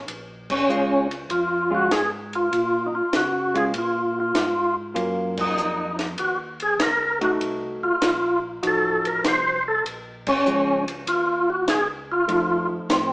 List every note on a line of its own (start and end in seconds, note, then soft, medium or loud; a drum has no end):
0.08 0.67 A#1 medium
0.08 kick soft
0.08 ride medium
0.50 1.07 C#4 loud
0.50 kick medium
0.50 crash medium
0.68 1.27 C#2 medium
0.68 1.06 G#3 medium
0.68 1.06 C#4 medium
0.68 1.07 F4 medium
0.68 hi-hat pedal medium
1.11 ride soft
1.30 1.89 F2 medium
1.30 1.73 F4 medium
1.30 kick soft
1.30 ride medium
1.71 1.88 G#3 medium
1.71 1.88 C#4 medium
1.71 1.89 F4 medium
1.75 1.93 F#4 medium
1.91 2.50 G#2 medium
1.91 2.10 G#4 loud
1.91 kick soft
1.91 snare medium
1.91 hi-hat pedal medium
1.91 ride medium
2.33 2.87 F4 loud
2.33 ride soft
2.52 2.91 A#2 medium
2.52 kick soft
2.52 ride medium
2.86 2.95 D#4 medium
2.92 3.02 A#2 soft
2.92 3.14 F4 medium
3.13 3.72 C#3 medium
3.13 3.57 F#4 medium
3.13 kick soft
3.13 snare medium
3.13 hi-hat pedal soft
3.13 ride medium
3.54 3.72 G#3 medium
3.54 3.72 C#4 medium
3.54 3.72 F4 medium
3.54 3.65 G#4 medium
3.54 ride soft
3.74 4.33 A#2 medium
3.74 kick soft
3.74 ride medium
3.78 4.19 F4 medium
4.20 4.75 F4 medium
4.35 4.94 G#2 medium
4.35 kick soft
4.35 snare medium
4.35 hi-hat pedal medium
4.35 ride medium
4.94 5.55 F#2 medium
4.94 5.89 F#3 soft
4.94 5.90 A#3 soft
4.94 5.90 C#4 medium
4.94 5.90 F4 medium
4.94 kick soft
4.94 ride medium
5.37 5.96 D#4 medium
5.37 kick medium
5.37 crash medium
5.56 6.16 F2 medium
5.56 hi-hat pedal medium
5.99 snare soft
5.99 ride soft
6.18 6.77 D#2 medium
6.18 6.38 F#4 medium
6.18 kick soft
6.18 ride medium
6.60 6.81 G#4 medium
6.60 ride soft
6.79 7.38 C#2 medium
6.79 7.19 A#4 loud
6.79 kick soft
6.79 snare medium
6.79 hi-hat pedal medium
6.79 ride medium
7.21 7.97 A3 medium
7.21 7.97 D#4 medium
7.21 7.97 F#4 medium
7.21 7.32 F#4 medium
7.21 ride soft
7.40 7.79 C2 medium
7.40 kick soft
7.40 ride medium
7.81 7.91 C2 soft
7.81 8.40 F4 medium
8.02 8.60 A#1 medium
8.02 kick soft
8.02 snare medium
8.02 hi-hat pedal medium
8.02 ride medium
8.63 9.22 A1 medium
8.63 9.57 F3 medium
8.63 9.57 D#4 medium
8.63 9.57 F#4 medium
8.63 kick soft
8.63 ride medium
8.67 9.08 A4 medium
9.05 9.23 A#4 medium
9.05 ride soft
9.24 9.83 C2 medium
9.24 9.63 C5 loud
9.24 kick soft
9.24 snare medium
9.24 hi-hat pedal medium
9.24 ride medium
9.68 9.84 A4 medium
9.85 10.44 A#1 medium
9.85 kick soft
9.85 ride medium
10.27 10.84 C#4 loud
10.27 kick medium
10.27 crash medium
10.46 11.05 C#2 medium
10.46 10.83 F3 medium
10.46 10.84 G#3 soft
10.46 10.84 C#4 medium
10.46 hi-hat pedal medium
10.88 ride medium
11.07 11.65 D#2 medium
11.07 11.50 F4 medium
11.07 kick soft
11.07 ride medium
11.50 11.69 F#4 medium
11.68 12.27 C#2 medium
11.68 11.88 G#4 loud
11.68 kick soft
11.68 snare medium
11.68 hi-hat pedal medium
11.68 ride medium
12.12 12.67 F4 loud
12.28 12.67 F2 medium
12.28 13.13 F3 medium
12.28 13.13 A3 medium
12.28 13.13 D#4 medium
12.28 kick soft
12.28 ride medium
12.70 12.79 F2 soft
12.89 13.13 A2 medium
12.89 13.13 C4 medium
12.89 kick soft
12.89 snare medium
12.89 hi-hat pedal medium
12.89 ride medium